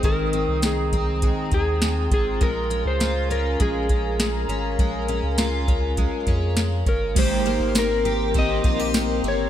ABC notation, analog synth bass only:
X:1
M:4/4
L:1/16
Q:1/4=101
K:Ab
V:1 name="Analog synth bass" clef=bass
A,,,3 C,,6 z E,,4 A,,,2 | B,,,3 D,,4- D,, B,,,6 A,,,2 | B,,,3 D,,6 z F,,4 G,,,2 | A,,,3 A,,,6- A,,, B,,,4 G,,,2 |]